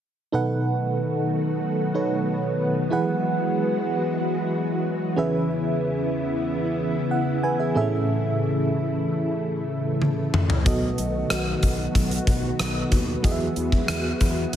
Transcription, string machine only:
0.34 D#3 F#3 A3 B3 F#4
2.91 E3 G#3 F#4
5.18 E2 C#3 E3 B3 E4
7.75 A3
10.66 D#3 B3
13.24 E3 G#3 F#4

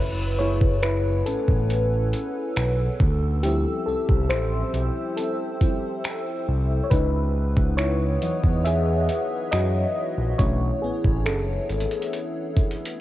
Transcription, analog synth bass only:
Already playing: F#1
1.26 A1
1.48 A1
2.56 B1
3.00 D2
3.87 C2
4.09 C2
4.30 A1
4.74 B1
6.48 C2
6.91 C#2
8.22 E2
8.43 E2
9.53 F#2
10.18 A#1
10.39 B1
10.83 A1
11.05 A1
11.26 F#1
11.70 G#1

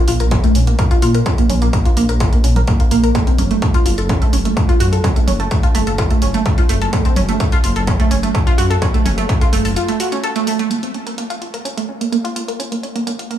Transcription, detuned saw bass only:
0.08 A#1
0.20 A#1
0.55 A#1
1.02 A#2
1.50 A#1
1.97 A#1
2.09 A#1
2.44 A#1
2.91 A#1
3.39 F#1
3.86 F#1
3.98 F#1
4.33 F#1
4.80 F#2
5.28 F#1
5.75 F#1
5.87 F#1
6.22 F#1
6.69 F#1
7.17 F#1
7.64 F#1
7.76 F#1
8.11 F#1
8.58 F#2
9.05 F#1
9.53 F#1
9.65 F#1

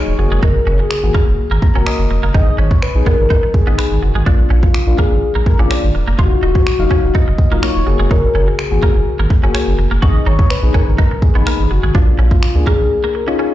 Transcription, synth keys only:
Already playing: F#3 D#4 G#4
0.18 A#3 F#4 G#4
1.03 A#3 F#4 G#4
1.63 A#5
1.75 A#3 F#4 A#4
1.87 D#5
2.34 B3 D#4 G#4
2.95 B3 D#4 G#4
3.67 B3 D#4 G#4
4.26 A#3 D4 F4
4.87 A#3 D4 F4
5.59 A#3 D4 F4
6.18 F#3 D#4 F4
6.79 F#3 D#4 F5
7.51 F#3 D#4 F4
7.86 A#3 F#4 G#4
8.71 A#3 F#4 G#4
9.43 A#3 F#4 G#4
10.02 B3 D#4 G#4
10.63 B3 D#4 G#4
11.35 B3 D#4 B4
11.94 A#3 D4 F4
12.55 A#3 D4 G#4
13.27 C#4 D#4 F4

